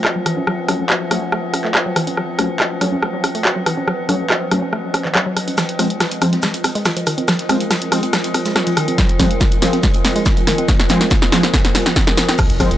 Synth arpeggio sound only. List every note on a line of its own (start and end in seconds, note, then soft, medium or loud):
0.05 0.11 F#4 medium
0.16 0.25 F#3 medium
0.26 0.33 E3 loud
0.37 0.41 C#4 medium
0.47 0.51 F#3 medium
0.69 0.75 C#4 medium
0.90 0.97 F#4 medium
1.11 1.18 F#3 medium
1.22 1.26 C#4 medium
1.32 1.36 A3 medium
1.54 1.60 C#4 medium
1.65 1.71 A3 loud
1.75 1.82 F#4 medium
1.86 1.95 F#3 medium
1.96 2.03 E3 loud
2.07 2.11 C#4 medium
2.17 2.21 F#3 medium
2.39 2.46 C#4 medium
2.60 2.67 F#4 medium
2.81 2.88 F#3 medium
2.92 2.96 C#4 medium
3.02 3.07 A3 medium
3.24 3.31 C#4 medium
3.35 3.41 A3 loud
3.45 3.52 F#4 medium
3.56 3.66 F#3 medium
3.66 3.73 E3 loud
3.77 3.81 C#4 medium
3.88 3.92 F#3 medium
4.09 4.16 C#4 medium
4.30 4.37 F#4 medium
4.51 4.58 F#3 medium
4.62 4.66 C#4 medium
4.73 4.77 A3 medium
4.94 5.01 C#4 loud
5.05 5.09 E3 medium
5.15 5.22 F#3 medium
5.26 5.33 F#3 loud
5.36 5.43 F#3 medium
5.48 5.57 C#4 medium
5.58 5.62 F3 medium
5.79 5.86 C4 medium
6.00 6.07 F4 medium
6.22 6.28 F3 medium
6.33 6.36 C4 medium
6.43 6.47 G#3 medium
6.64 6.71 C4 medium
6.75 6.82 G#3 loud
6.85 6.92 F4 medium
6.97 7.06 F3 medium
7.07 7.14 D#3 loud
7.18 7.22 C4 medium
7.28 7.32 F3 medium
7.49 7.56 C4 medium
7.71 7.77 F4 medium
7.92 7.99 F3 medium
8.03 8.07 C4 medium
8.13 8.17 G#3 medium
8.34 8.41 C4 medium
8.45 8.52 G#3 loud
8.56 8.63 F4 medium
8.67 8.76 F3 medium
8.77 8.84 D#3 loud
8.88 8.92 C4 medium
8.98 9.02 F3 medium
9.20 9.26 C4 medium
9.41 9.48 F4 medium
9.62 9.69 F3 medium
9.73 9.77 C4 medium
9.83 9.87 G#3 medium
10.05 10.11 C4 medium
10.16 10.22 G#3 loud
10.26 10.33 F4 medium
10.37 10.46 F3 medium
10.47 10.54 D#3 loud
10.58 10.62 C4 medium
10.68 10.73 F3 medium
10.90 10.97 C4 medium
11.11 11.18 F4 medium
11.32 11.39 F3 medium
11.43 11.47 C4 medium
11.54 11.58 G#3 medium
11.75 11.82 G3 loud
11.86 11.92 F3 medium
11.96 12.06 F3 medium
12.07 12.14 G#3 medium
12.17 12.24 F3 medium
12.28 12.35 C4 loud
12.39 12.43 F3 medium
12.60 12.67 C4 medium